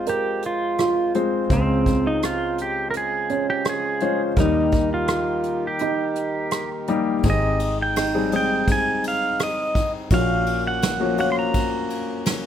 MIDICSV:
0, 0, Header, 1, 7, 480
1, 0, Start_track
1, 0, Key_signature, -4, "major"
1, 0, Tempo, 717703
1, 1007, Time_signature, 4, 2, 24, 8
1, 8334, End_track
2, 0, Start_track
2, 0, Title_t, "Pedal steel guitar"
2, 0, Program_c, 0, 26
2, 63, Note_on_c, 0, 67, 87
2, 302, Note_off_c, 0, 67, 0
2, 309, Note_on_c, 0, 65, 82
2, 751, Note_off_c, 0, 65, 0
2, 1022, Note_on_c, 0, 60, 76
2, 1385, Note_off_c, 0, 60, 0
2, 1385, Note_on_c, 0, 63, 83
2, 1499, Note_off_c, 0, 63, 0
2, 1505, Note_on_c, 0, 65, 95
2, 1742, Note_off_c, 0, 65, 0
2, 1751, Note_on_c, 0, 67, 90
2, 1938, Note_off_c, 0, 67, 0
2, 1943, Note_on_c, 0, 70, 75
2, 1978, Note_off_c, 0, 70, 0
2, 1988, Note_on_c, 0, 68, 106
2, 2313, Note_off_c, 0, 68, 0
2, 2340, Note_on_c, 0, 67, 97
2, 2456, Note_off_c, 0, 67, 0
2, 2471, Note_on_c, 0, 68, 107
2, 2818, Note_off_c, 0, 68, 0
2, 2943, Note_on_c, 0, 63, 78
2, 3270, Note_off_c, 0, 63, 0
2, 3303, Note_on_c, 0, 65, 90
2, 3788, Note_off_c, 0, 65, 0
2, 3794, Note_on_c, 0, 67, 83
2, 4473, Note_off_c, 0, 67, 0
2, 4881, Note_on_c, 0, 75, 70
2, 5199, Note_off_c, 0, 75, 0
2, 5233, Note_on_c, 0, 79, 82
2, 5583, Note_off_c, 0, 79, 0
2, 5591, Note_on_c, 0, 79, 77
2, 5825, Note_off_c, 0, 79, 0
2, 5830, Note_on_c, 0, 80, 91
2, 6065, Note_off_c, 0, 80, 0
2, 6072, Note_on_c, 0, 77, 84
2, 6306, Note_off_c, 0, 77, 0
2, 6309, Note_on_c, 0, 75, 84
2, 6633, Note_off_c, 0, 75, 0
2, 6781, Note_on_c, 0, 77, 83
2, 7108, Note_off_c, 0, 77, 0
2, 7139, Note_on_c, 0, 78, 93
2, 7486, Note_off_c, 0, 78, 0
2, 7494, Note_on_c, 0, 78, 90
2, 7565, Note_off_c, 0, 78, 0
2, 7569, Note_on_c, 0, 84, 71
2, 7611, Note_off_c, 0, 84, 0
2, 7616, Note_on_c, 0, 82, 90
2, 8334, Note_off_c, 0, 82, 0
2, 8334, End_track
3, 0, Start_track
3, 0, Title_t, "Felt piano"
3, 0, Program_c, 1, 0
3, 48, Note_on_c, 1, 70, 60
3, 531, Note_on_c, 1, 65, 65
3, 935, Note_off_c, 1, 70, 0
3, 1222, Note_off_c, 1, 65, 0
3, 2207, Note_on_c, 1, 61, 58
3, 3093, Note_off_c, 1, 61, 0
3, 3888, Note_on_c, 1, 63, 74
3, 4774, Note_off_c, 1, 63, 0
3, 5329, Note_on_c, 1, 63, 65
3, 6215, Note_off_c, 1, 63, 0
3, 8334, End_track
4, 0, Start_track
4, 0, Title_t, "Harmonium"
4, 0, Program_c, 2, 20
4, 0, Note_on_c, 2, 56, 74
4, 0, Note_on_c, 2, 65, 76
4, 0, Note_on_c, 2, 72, 67
4, 1007, Note_on_c, 2, 49, 73
4, 2899, Note_off_c, 2, 65, 0
4, 2900, Note_off_c, 2, 72, 0
4, 2902, Note_off_c, 2, 56, 0
4, 2907, Note_off_c, 2, 49, 0
4, 2924, Note_on_c, 2, 63, 66
4, 2926, Note_on_c, 2, 67, 65
4, 2927, Note_on_c, 2, 51, 71
4, 2928, Note_on_c, 2, 70, 81
4, 4826, Note_off_c, 2, 63, 0
4, 4827, Note_off_c, 2, 51, 0
4, 4827, Note_off_c, 2, 67, 0
4, 4828, Note_off_c, 2, 70, 0
4, 4846, Note_on_c, 2, 63, 74
4, 4848, Note_on_c, 2, 60, 67
4, 6746, Note_off_c, 2, 63, 0
4, 6748, Note_off_c, 2, 60, 0
4, 6757, Note_on_c, 2, 61, 81
4, 6759, Note_on_c, 2, 58, 64
4, 8334, Note_off_c, 2, 58, 0
4, 8334, Note_off_c, 2, 61, 0
4, 8334, End_track
5, 0, Start_track
5, 0, Title_t, "Upright piano"
5, 0, Program_c, 3, 0
5, 0, Control_c, 3, 64, 127
5, 0, Note_on_c, 3, 29, 49
5, 0, Note_on_c, 3, 41, 53
5, 0, Note_on_c, 3, 56, 59
5, 0, Note_on_c, 3, 60, 57
5, 0, Note_on_c, 3, 65, 59
5, 0, Note_on_c, 3, 72, 71
5, 769, Note_off_c, 3, 65, 0
5, 769, Note_on_c, 3, 65, 58
5, 770, Note_off_c, 3, 56, 0
5, 770, Note_on_c, 3, 56, 69
5, 771, Note_off_c, 3, 72, 0
5, 771, Note_on_c, 3, 72, 74
5, 772, Note_off_c, 3, 60, 0
5, 772, Note_on_c, 3, 60, 63
5, 944, Note_off_c, 3, 65, 0
5, 945, Note_off_c, 3, 56, 0
5, 945, Note_off_c, 3, 60, 0
5, 945, Note_off_c, 3, 72, 0
5, 982, Note_off_c, 3, 29, 0
5, 983, Note_off_c, 3, 41, 0
5, 1006, Note_on_c, 3, 37, 59
5, 1006, Note_on_c, 3, 56, 65
5, 1006, Note_on_c, 3, 72, 64
5, 1009, Note_on_c, 3, 49, 58
5, 1010, Note_on_c, 3, 60, 60
5, 1013, Note_on_c, 3, 65, 61
5, 1017, Control_c, 3, 64, 0
5, 1139, Control_c, 3, 64, 127
5, 1710, Note_off_c, 3, 56, 0
5, 1711, Note_off_c, 3, 72, 0
5, 1712, Note_off_c, 3, 60, 0
5, 1714, Note_off_c, 3, 65, 0
5, 2687, Note_on_c, 3, 65, 63
5, 2687, Note_on_c, 3, 72, 74
5, 2688, Note_on_c, 3, 61, 62
5, 2690, Note_on_c, 3, 56, 68
5, 2862, Note_off_c, 3, 65, 0
5, 2862, Note_off_c, 3, 72, 0
5, 2863, Note_off_c, 3, 61, 0
5, 2864, Note_off_c, 3, 56, 0
5, 2898, Note_off_c, 3, 37, 0
5, 2900, Note_off_c, 3, 49, 0
5, 2925, Note_on_c, 3, 51, 53
5, 2926, Note_on_c, 3, 58, 62
5, 2926, Note_on_c, 3, 70, 67
5, 2927, Note_on_c, 3, 55, 66
5, 2928, Note_on_c, 3, 39, 55
5, 2928, Note_on_c, 3, 63, 58
5, 2935, Control_c, 3, 64, 0
5, 3054, Control_c, 3, 64, 127
5, 3630, Note_off_c, 3, 58, 0
5, 3630, Note_off_c, 3, 70, 0
5, 3631, Note_off_c, 3, 55, 0
5, 3631, Note_off_c, 3, 63, 0
5, 4604, Note_on_c, 3, 63, 69
5, 4605, Note_on_c, 3, 55, 81
5, 4605, Note_on_c, 3, 58, 73
5, 4606, Note_on_c, 3, 67, 84
5, 4781, Note_off_c, 3, 55, 0
5, 4781, Note_off_c, 3, 58, 0
5, 4781, Note_off_c, 3, 63, 0
5, 4782, Note_off_c, 3, 67, 0
5, 4819, Note_off_c, 3, 51, 0
5, 4820, Note_off_c, 3, 39, 0
5, 4846, Note_on_c, 3, 67, 62
5, 4847, Note_on_c, 3, 32, 55
5, 4849, Note_on_c, 3, 44, 49
5, 4849, Note_on_c, 3, 63, 60
5, 4852, Note_on_c, 3, 60, 59
5, 4855, Note_on_c, 3, 68, 72
5, 4856, Control_c, 3, 64, 0
5, 4971, Control_c, 3, 64, 127
5, 5286, Note_off_c, 3, 67, 0
5, 5288, Note_off_c, 3, 63, 0
5, 5289, Note_off_c, 3, 60, 0
5, 5291, Note_off_c, 3, 68, 0
5, 5449, Note_on_c, 3, 68, 67
5, 5453, Note_on_c, 3, 60, 60
5, 5454, Note_on_c, 3, 55, 63
5, 5454, Note_on_c, 3, 63, 65
5, 5535, Note_off_c, 3, 68, 0
5, 5537, Note_off_c, 3, 60, 0
5, 5538, Note_off_c, 3, 55, 0
5, 5538, Note_off_c, 3, 63, 0
5, 5571, Note_on_c, 3, 56, 74
5, 5571, Note_on_c, 3, 63, 63
5, 5572, Note_on_c, 3, 60, 64
5, 5573, Note_on_c, 3, 68, 75
5, 6273, Note_off_c, 3, 56, 0
5, 6273, Note_off_c, 3, 60, 0
5, 6273, Note_off_c, 3, 63, 0
5, 6274, Note_off_c, 3, 68, 0
5, 6740, Note_off_c, 3, 32, 0
5, 6741, Note_off_c, 3, 44, 0
5, 6766, Note_on_c, 3, 61, 59
5, 6766, Note_on_c, 3, 65, 64
5, 6767, Note_on_c, 3, 34, 58
5, 6767, Note_on_c, 3, 46, 56
5, 6767, Note_on_c, 3, 66, 73
5, 6771, Note_on_c, 3, 58, 57
5, 6775, Control_c, 3, 64, 0
5, 6892, Control_c, 3, 64, 127
5, 7206, Note_off_c, 3, 61, 0
5, 7206, Note_off_c, 3, 65, 0
5, 7207, Note_off_c, 3, 66, 0
5, 7208, Note_off_c, 3, 58, 0
5, 7356, Note_on_c, 3, 53, 66
5, 7360, Note_on_c, 3, 58, 62
5, 7360, Note_on_c, 3, 61, 63
5, 7363, Note_on_c, 3, 66, 72
5, 7449, Note_off_c, 3, 53, 0
5, 7451, Note_off_c, 3, 58, 0
5, 7451, Note_off_c, 3, 61, 0
5, 7453, Note_off_c, 3, 66, 0
5, 7478, Note_on_c, 3, 58, 61
5, 7479, Note_on_c, 3, 65, 67
5, 7480, Note_on_c, 3, 61, 62
5, 7481, Note_on_c, 3, 66, 73
5, 8187, Note_off_c, 3, 58, 0
5, 8187, Note_off_c, 3, 61, 0
5, 8187, Note_off_c, 3, 65, 0
5, 8188, Note_off_c, 3, 66, 0
5, 8334, Note_off_c, 3, 34, 0
5, 8334, Note_off_c, 3, 46, 0
5, 8334, End_track
6, 0, Start_track
6, 0, Title_t, "Fingered electric bass"
6, 0, Program_c, 4, 33
6, 0, Note_on_c, 4, 29, 78
6, 979, Note_off_c, 4, 29, 0
6, 1002, Note_on_c, 4, 37, 82
6, 2897, Note_off_c, 4, 37, 0
6, 2922, Note_on_c, 4, 39, 80
6, 4817, Note_off_c, 4, 39, 0
6, 4842, Note_on_c, 4, 32, 79
6, 6737, Note_off_c, 4, 32, 0
6, 6760, Note_on_c, 4, 34, 87
6, 8334, Note_off_c, 4, 34, 0
6, 8334, End_track
7, 0, Start_track
7, 0, Title_t, "Drums"
7, 42, Note_on_c, 9, 42, 70
7, 109, Note_off_c, 9, 42, 0
7, 283, Note_on_c, 9, 42, 51
7, 349, Note_off_c, 9, 42, 0
7, 522, Note_on_c, 9, 42, 64
7, 529, Note_on_c, 9, 37, 82
7, 589, Note_off_c, 9, 42, 0
7, 596, Note_off_c, 9, 37, 0
7, 765, Note_on_c, 9, 42, 52
7, 832, Note_off_c, 9, 42, 0
7, 1004, Note_on_c, 9, 36, 84
7, 1004, Note_on_c, 9, 42, 62
7, 1070, Note_off_c, 9, 42, 0
7, 1071, Note_off_c, 9, 36, 0
7, 1246, Note_on_c, 9, 36, 71
7, 1248, Note_on_c, 9, 42, 54
7, 1313, Note_off_c, 9, 36, 0
7, 1315, Note_off_c, 9, 42, 0
7, 1487, Note_on_c, 9, 42, 66
7, 1494, Note_on_c, 9, 37, 83
7, 1554, Note_off_c, 9, 42, 0
7, 1561, Note_off_c, 9, 37, 0
7, 1726, Note_on_c, 9, 42, 50
7, 1793, Note_off_c, 9, 42, 0
7, 1964, Note_on_c, 9, 42, 60
7, 2031, Note_off_c, 9, 42, 0
7, 2203, Note_on_c, 9, 42, 49
7, 2270, Note_off_c, 9, 42, 0
7, 2439, Note_on_c, 9, 42, 62
7, 2445, Note_on_c, 9, 37, 91
7, 2506, Note_off_c, 9, 42, 0
7, 2512, Note_off_c, 9, 37, 0
7, 2677, Note_on_c, 9, 42, 47
7, 2743, Note_off_c, 9, 42, 0
7, 2917, Note_on_c, 9, 42, 61
7, 2922, Note_on_c, 9, 36, 81
7, 2984, Note_off_c, 9, 42, 0
7, 2989, Note_off_c, 9, 36, 0
7, 3155, Note_on_c, 9, 42, 51
7, 3161, Note_on_c, 9, 36, 70
7, 3222, Note_off_c, 9, 42, 0
7, 3228, Note_off_c, 9, 36, 0
7, 3395, Note_on_c, 9, 42, 66
7, 3401, Note_on_c, 9, 37, 90
7, 3461, Note_off_c, 9, 42, 0
7, 3468, Note_off_c, 9, 37, 0
7, 3634, Note_on_c, 9, 42, 45
7, 3701, Note_off_c, 9, 42, 0
7, 3871, Note_on_c, 9, 42, 68
7, 3938, Note_off_c, 9, 42, 0
7, 4116, Note_on_c, 9, 42, 52
7, 4183, Note_off_c, 9, 42, 0
7, 4353, Note_on_c, 9, 42, 69
7, 4360, Note_on_c, 9, 37, 86
7, 4420, Note_off_c, 9, 42, 0
7, 4427, Note_off_c, 9, 37, 0
7, 4598, Note_on_c, 9, 42, 52
7, 4664, Note_off_c, 9, 42, 0
7, 4836, Note_on_c, 9, 51, 61
7, 4841, Note_on_c, 9, 36, 82
7, 4903, Note_off_c, 9, 51, 0
7, 4908, Note_off_c, 9, 36, 0
7, 5080, Note_on_c, 9, 51, 50
7, 5147, Note_off_c, 9, 51, 0
7, 5324, Note_on_c, 9, 51, 63
7, 5330, Note_on_c, 9, 37, 83
7, 5391, Note_off_c, 9, 51, 0
7, 5397, Note_off_c, 9, 37, 0
7, 5564, Note_on_c, 9, 51, 49
7, 5630, Note_off_c, 9, 51, 0
7, 5802, Note_on_c, 9, 51, 60
7, 5803, Note_on_c, 9, 36, 70
7, 5869, Note_off_c, 9, 51, 0
7, 5870, Note_off_c, 9, 36, 0
7, 6045, Note_on_c, 9, 51, 49
7, 6112, Note_off_c, 9, 51, 0
7, 6281, Note_on_c, 9, 51, 61
7, 6288, Note_on_c, 9, 37, 90
7, 6348, Note_off_c, 9, 51, 0
7, 6355, Note_off_c, 9, 37, 0
7, 6522, Note_on_c, 9, 36, 68
7, 6525, Note_on_c, 9, 51, 50
7, 6589, Note_off_c, 9, 36, 0
7, 6592, Note_off_c, 9, 51, 0
7, 6757, Note_on_c, 9, 51, 63
7, 6760, Note_on_c, 9, 36, 83
7, 6824, Note_off_c, 9, 51, 0
7, 6827, Note_off_c, 9, 36, 0
7, 6997, Note_on_c, 9, 51, 49
7, 7064, Note_off_c, 9, 51, 0
7, 7238, Note_on_c, 9, 51, 68
7, 7245, Note_on_c, 9, 38, 87
7, 7305, Note_off_c, 9, 51, 0
7, 7311, Note_off_c, 9, 38, 0
7, 7476, Note_on_c, 9, 51, 50
7, 7543, Note_off_c, 9, 51, 0
7, 7717, Note_on_c, 9, 51, 65
7, 7720, Note_on_c, 9, 36, 69
7, 7784, Note_off_c, 9, 51, 0
7, 7787, Note_off_c, 9, 36, 0
7, 7960, Note_on_c, 9, 51, 52
7, 8027, Note_off_c, 9, 51, 0
7, 8197, Note_on_c, 9, 51, 70
7, 8203, Note_on_c, 9, 38, 83
7, 8263, Note_off_c, 9, 51, 0
7, 8270, Note_off_c, 9, 38, 0
7, 8334, End_track
0, 0, End_of_file